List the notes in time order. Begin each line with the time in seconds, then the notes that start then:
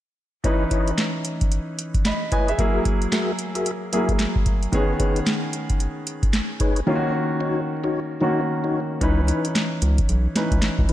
0.44 E3 C#4 D#4 E4 B4 C#5 D#5, kick, closed hi-hat
0.71 E4 B4 C#5 D#5, kick, closed hi-hat
0.88 closed hi-hat
0.98 snare, clap, closed hi-hat
1.25 closed hi-hat
1.41 kick, closed hi-hat
1.52 closed hi-hat
1.79 closed hi-hat
1.94 kick, closed hi-hat
2.05 D#5 B5, snare, clap, closed hi-hat
2.32 E4 B4 C#5 D#5 G#5, kick, closed hi-hat
2.48 G#4 E5, closed hi-hat
2.58 F#3 A#3 E4 F#4 G#4 A#4 E5, kick, closed hi-hat
2.85 kick, closed hi-hat
3.02 closed hi-hat
3.12 F#4 G#4 A#4 E5, snare, clap, closed hi-hat
3.39 closed hi-hat
3.55 F#4 G#4 A#4 E5, closed hi-hat
3.66 closed hi-hat
3.92 F#3 A#3 E4 F#4 G#4 A#4 E5, closed hi-hat
4.09 kick, closed hi-hat
4.19 snare, clap, closed hi-hat
4.36 kick
4.46 kick, closed hi-hat
4.63 closed hi-hat
4.72 D#3 B3 C#4 D#4 G#4 B4 C#5, kick, closed hi-hat
5.00 D#4 G#4 B4 C#5, kick, closed hi-hat
5.16 closed hi-hat
5.27 snare, clap, closed hi-hat
5.53 closed hi-hat
5.70 kick, closed hi-hat
5.80 closed hi-hat
6.07 closed hi-hat
6.23 kick, closed hi-hat
6.33 snare, clap, closed hi-hat
6.60 D#4 G#4 B4 C#5, kick, closed hi-hat
6.76 closed hi-hat
6.87 D#3 A#3 C#4 D#4 F4 F#4 C#5
6.95 F#4
7.40 D#4 F#4 C#5
7.84 D#4 F#4 C#5
8.21 D#3 A#3 C#4 D#4 F#4 C#5
8.64 D#4 F#4 C#5
9.01 C#2 E3 C#4 D#4 E4 B4, kick, closed hi-hat
9.28 D#4 E4 B4, closed hi-hat
9.45 closed hi-hat
9.55 snare, clap, closed hi-hat
9.82 C#2, closed hi-hat
9.98 kick, closed hi-hat
10.09 B1, closed hi-hat
10.36 E3 C#4 D#4 B4, snare, closed hi-hat
10.52 C#2, kick, closed hi-hat
10.62 snare, clap, closed hi-hat
10.79 C#2, kick
10.89 G#1 D#4 E4 B4, closed hi-hat